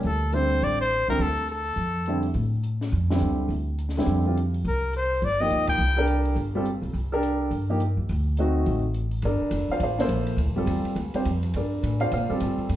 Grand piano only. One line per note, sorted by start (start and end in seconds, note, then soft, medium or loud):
0.32 0.76 D3 medium
0.32 0.76 G3 soft
0.32 0.77 C4 soft
0.32 0.77 E4 medium
1.08 1.19 D3 medium
1.08 1.19 G3 medium
1.08 1.19 C4 medium
1.08 1.19 E4 medium
2.08 2.23 D3 medium
2.08 2.23 G3 soft
2.08 2.23 C4 soft
2.08 2.24 E4 medium
3.10 3.48 D3 medium
3.10 3.49 G3 medium
3.10 3.49 C4 medium
3.10 3.49 E4 medium
3.97 4.24 D3 medium
3.97 4.24 G3 medium
3.97 4.24 C4 medium
3.97 4.25 E4 medium
4.26 4.36 D3 medium
4.26 4.36 G3 soft
4.26 4.36 C4 soft
4.26 4.36 F4 medium
5.40 5.78 F3 medium
5.40 5.78 A#3 medium
5.40 5.78 D#4 medium
5.40 5.78 G4 medium
5.97 6.35 D4 medium
5.97 6.35 G4 medium
5.97 6.35 A4 medium
5.97 6.35 A#4 medium
6.55 6.65 G3 medium
6.55 6.65 C4 medium
6.55 6.65 F4 medium
6.55 6.66 A4 medium
7.12 7.50 D4 medium
7.12 7.50 G4 medium
7.12 7.50 A4 medium
7.12 7.50 A#4 medium
7.69 7.79 F3 medium
7.69 7.80 A#3 medium
7.69 7.80 D#4 medium
7.69 7.80 G4 medium
8.39 8.81 A3 medium
8.39 8.82 C4 medium
8.39 8.82 D#4 medium
8.39 8.82 F#4 medium
9.25 9.68 D4 medium
9.25 9.68 A4 medium
9.25 9.68 A#4 medium
9.25 9.68 D5 medium
9.71 9.82 F4 medium
9.71 9.82 C5 medium
9.71 9.82 D5 medium
9.71 9.82 F5 medium
9.83 10.00 F4 soft
9.83 9.99 C5 medium
9.83 10.00 D5 medium
9.83 10.00 F5 medium
9.99 10.37 A#3 medium
9.99 10.37 E4 medium
9.99 10.38 A4 medium
9.99 10.38 C5 medium
10.56 10.94 G3 medium
10.56 10.95 C4 medium
10.56 10.95 F4 medium
10.56 10.95 A4 medium
11.14 11.25 G3 medium
11.14 11.25 C4 medium
11.14 11.25 F4 medium
11.14 11.25 C5 medium
11.56 11.99 D4 soft
11.56 11.99 A4 soft
11.56 11.99 A#4 soft
11.56 11.99 D5 medium
12.01 12.12 F4 medium
12.01 12.12 C5 medium
12.01 12.12 D5 medium
12.01 12.12 F5 medium
12.13 12.28 F4 medium
12.13 12.30 C5 medium
12.13 12.30 D5 medium
12.13 12.30 F5 medium
12.29 12.68 G3 medium
12.29 12.68 C4 medium
12.29 12.68 F4 medium
12.29 12.68 A4 medium